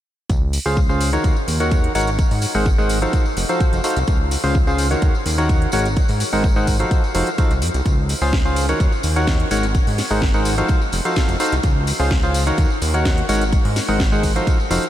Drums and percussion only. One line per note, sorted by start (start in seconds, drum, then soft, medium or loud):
0.30 kick loud
0.30 closed hi-hat medium
0.30 tambourine soft
0.53 open hi-hat loud
0.53 tambourine medium
0.66 tambourine soft
0.77 kick loud
0.77 tambourine soft
0.90 tambourine soft
1.01 open hi-hat loud
1.01 tambourine medium
1.13 closed hi-hat medium
1.13 tambourine soft
1.24 kick loud
1.24 closed hi-hat medium
1.24 tambourine soft
1.36 tambourine soft
1.48 open hi-hat loud
1.48 tambourine medium
1.60 closed hi-hat soft
1.60 tambourine soft
1.71 kick loud
1.71 closed hi-hat medium
1.71 tambourine soft
1.84 closed hi-hat medium
1.95 open hi-hat medium
1.95 tambourine medium
2.01 closed hi-hat medium
2.07 closed hi-hat soft
2.07 tambourine soft
2.19 kick loud
2.19 closed hi-hat medium
2.19 tambourine medium
2.31 open hi-hat medium
2.31 tambourine soft
2.42 open hi-hat loud
2.42 tambourine medium
2.55 tambourine soft
2.66 kick loud
2.66 tambourine medium
2.79 tambourine soft
2.89 open hi-hat loud
2.89 tambourine medium
3.02 closed hi-hat medium
3.02 tambourine soft
3.13 kick loud
3.13 closed hi-hat medium
3.13 tambourine medium
3.26 tambourine soft
3.37 open hi-hat loud
3.37 tambourine medium
3.49 closed hi-hat soft
3.49 tambourine soft
3.60 kick loud
3.60 closed hi-hat medium
3.60 tambourine soft
3.73 closed hi-hat medium
3.73 tambourine soft
3.84 open hi-hat loud
3.84 tambourine medium
3.90 closed hi-hat medium
3.96 closed hi-hat soft
3.96 tambourine soft
4.07 kick loud
4.07 closed hi-hat medium
4.07 tambourine soft
4.31 open hi-hat loud
4.31 tambourine medium
4.44 tambourine soft
4.54 kick loud
4.54 tambourine soft
4.67 tambourine soft
4.78 open hi-hat loud
4.78 tambourine medium
4.91 closed hi-hat soft
4.91 tambourine soft
5.02 kick loud
5.02 closed hi-hat medium
5.02 tambourine soft
5.15 tambourine soft
5.26 open hi-hat loud
5.26 tambourine medium
5.38 closed hi-hat soft
5.38 tambourine soft
5.49 kick loud
5.49 closed hi-hat medium
5.49 tambourine medium
5.62 closed hi-hat soft
5.72 open hi-hat loud
5.72 tambourine medium
5.79 closed hi-hat medium
5.85 closed hi-hat soft
5.85 tambourine soft
5.97 kick loud
5.97 closed hi-hat medium
5.97 tambourine soft
6.08 open hi-hat medium
6.08 tambourine soft
6.20 open hi-hat loud
6.20 tambourine medium
6.32 tambourine soft
6.44 kick loud
6.44 tambourine soft
6.56 tambourine soft
6.67 kick medium
6.67 open hi-hat loud
6.67 tambourine medium
6.79 closed hi-hat soft
6.79 tambourine soft
6.91 kick loud
6.91 closed hi-hat medium
6.91 tambourine soft
7.04 tambourine soft
7.14 open hi-hat loud
7.14 tambourine medium
7.26 closed hi-hat soft
7.26 tambourine soft
7.38 kick loud
7.38 closed hi-hat medium
7.38 tambourine medium
7.51 closed hi-hat soft
7.51 tambourine soft
7.62 open hi-hat loud
7.62 tambourine medium
7.68 closed hi-hat medium
7.74 closed hi-hat soft
7.74 tambourine soft
7.86 kick loud
7.86 closed hi-hat medium
7.86 tambourine soft
8.09 open hi-hat loud
8.09 tambourine medium
8.22 tambourine soft
8.33 kick loud
8.33 snare loud
8.33 tambourine soft
8.45 tambourine soft
8.56 open hi-hat loud
8.56 tambourine medium
8.69 closed hi-hat soft
8.69 tambourine soft
8.80 kick loud
8.80 closed hi-hat medium
8.80 tambourine soft
8.92 tambourine soft
9.03 open hi-hat loud
9.03 tambourine medium
9.16 closed hi-hat soft
9.16 tambourine soft
9.27 kick loud
9.27 snare loud
9.27 closed hi-hat medium
9.27 tambourine soft
9.40 closed hi-hat soft
9.51 open hi-hat loud
9.51 tambourine medium
9.57 closed hi-hat medium
9.63 closed hi-hat soft
9.63 tambourine soft
9.75 kick loud
9.75 closed hi-hat medium
9.75 tambourine soft
9.87 open hi-hat medium
9.87 tambourine soft
9.98 snare medium
9.98 open hi-hat medium
9.98 tambourine medium
10.10 tambourine soft
10.21 kick loud
10.21 snare loud
10.21 tambourine soft
10.34 tambourine soft
10.45 open hi-hat loud
10.45 tambourine medium
10.58 closed hi-hat medium
10.58 tambourine soft
10.68 kick loud
10.68 closed hi-hat medium
10.68 tambourine soft
10.82 tambourine soft
10.92 open hi-hat loud
10.92 tambourine medium
11.05 closed hi-hat soft
11.05 tambourine soft
11.16 kick loud
11.16 snare loud
11.16 closed hi-hat medium
11.16 tambourine soft
11.28 closed hi-hat soft
11.28 tambourine soft
11.40 open hi-hat medium
11.40 tambourine medium
11.46 closed hi-hat medium
11.52 closed hi-hat soft
11.52 tambourine soft
11.63 kick loud
11.63 closed hi-hat medium
11.63 tambourine soft
11.87 open hi-hat medium
11.87 tambourine medium
12.00 tambourine soft
12.11 kick loud
12.11 snare loud
12.11 tambourine soft
12.22 tambourine soft
12.34 open hi-hat loud
12.34 tambourine medium
12.47 closed hi-hat medium
12.47 tambourine soft
12.58 kick loud
12.58 closed hi-hat medium
12.58 tambourine soft
12.70 tambourine soft
12.82 open hi-hat medium
12.82 tambourine medium
12.94 closed hi-hat medium
12.94 tambourine soft
13.05 kick loud
13.05 snare loud
13.05 closed hi-hat medium
13.05 tambourine soft
13.18 closed hi-hat medium
13.29 open hi-hat medium
13.29 tambourine medium
13.35 closed hi-hat medium
13.41 closed hi-hat soft
13.41 tambourine soft
13.52 kick loud
13.52 closed hi-hat medium
13.52 tambourine soft
13.65 open hi-hat medium
13.76 snare medium
13.76 open hi-hat medium
13.76 tambourine medium
13.88 tambourine soft
14.00 kick loud
14.00 snare loud
14.00 tambourine medium
14.12 tambourine soft
14.23 kick medium
14.23 open hi-hat loud
14.23 tambourine medium
14.36 closed hi-hat medium
14.36 tambourine soft
14.47 kick loud
14.47 closed hi-hat medium
14.47 tambourine soft
14.60 tambourine soft
14.71 open hi-hat loud
14.71 tambourine medium
14.82 closed hi-hat medium
14.82 tambourine soft